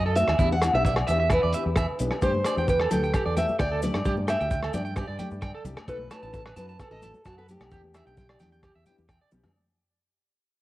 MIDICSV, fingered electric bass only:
0, 0, Header, 1, 2, 480
1, 0, Start_track
1, 0, Tempo, 458015
1, 414, Time_signature, 4, 2, 24, 8
1, 11122, End_track
2, 0, Start_track
2, 0, Title_t, "Fingered electric bass"
2, 0, Program_c, 0, 33
2, 0, Note_on_c, 0, 42, 89
2, 235, Note_off_c, 0, 42, 0
2, 295, Note_on_c, 0, 39, 84
2, 393, Note_off_c, 0, 39, 0
2, 407, Note_on_c, 0, 40, 90
2, 716, Note_off_c, 0, 40, 0
2, 770, Note_on_c, 0, 35, 89
2, 1072, Note_off_c, 0, 35, 0
2, 1138, Note_on_c, 0, 40, 89
2, 1442, Note_off_c, 0, 40, 0
2, 1503, Note_on_c, 0, 40, 69
2, 1597, Note_off_c, 0, 40, 0
2, 1738, Note_on_c, 0, 40, 82
2, 1938, Note_off_c, 0, 40, 0
2, 2098, Note_on_c, 0, 35, 94
2, 2200, Note_off_c, 0, 35, 0
2, 2329, Note_on_c, 0, 43, 85
2, 2531, Note_off_c, 0, 43, 0
2, 2695, Note_on_c, 0, 40, 89
2, 2993, Note_off_c, 0, 40, 0
2, 3058, Note_on_c, 0, 38, 88
2, 3256, Note_off_c, 0, 38, 0
2, 3413, Note_on_c, 0, 40, 77
2, 3615, Note_off_c, 0, 40, 0
2, 3766, Note_on_c, 0, 38, 82
2, 4073, Note_off_c, 0, 38, 0
2, 4134, Note_on_c, 0, 43, 77
2, 4230, Note_off_c, 0, 43, 0
2, 4249, Note_on_c, 0, 43, 95
2, 4554, Note_off_c, 0, 43, 0
2, 4619, Note_on_c, 0, 38, 86
2, 4914, Note_off_c, 0, 38, 0
2, 4966, Note_on_c, 0, 43, 93
2, 5272, Note_off_c, 0, 43, 0
2, 5327, Note_on_c, 0, 43, 83
2, 5425, Note_off_c, 0, 43, 0
2, 5571, Note_on_c, 0, 43, 81
2, 5772, Note_off_c, 0, 43, 0
2, 5915, Note_on_c, 0, 36, 107
2, 6024, Note_off_c, 0, 36, 0
2, 6163, Note_on_c, 0, 35, 94
2, 6365, Note_off_c, 0, 35, 0
2, 6528, Note_on_c, 0, 33, 85
2, 6827, Note_off_c, 0, 33, 0
2, 6880, Note_on_c, 0, 42, 94
2, 7083, Note_off_c, 0, 42, 0
2, 7245, Note_on_c, 0, 33, 89
2, 7449, Note_off_c, 0, 33, 0
2, 7607, Note_on_c, 0, 42, 94
2, 7913, Note_off_c, 0, 42, 0
2, 7968, Note_on_c, 0, 35, 85
2, 8066, Note_off_c, 0, 35, 0
2, 8087, Note_on_c, 0, 40, 98
2, 8393, Note_off_c, 0, 40, 0
2, 8454, Note_on_c, 0, 35, 88
2, 8751, Note_off_c, 0, 35, 0
2, 8805, Note_on_c, 0, 40, 92
2, 9112, Note_off_c, 0, 40, 0
2, 9176, Note_on_c, 0, 40, 77
2, 9271, Note_off_c, 0, 40, 0
2, 9417, Note_on_c, 0, 40, 78
2, 9616, Note_off_c, 0, 40, 0
2, 9773, Note_on_c, 0, 35, 94
2, 9875, Note_off_c, 0, 35, 0
2, 11122, End_track
0, 0, End_of_file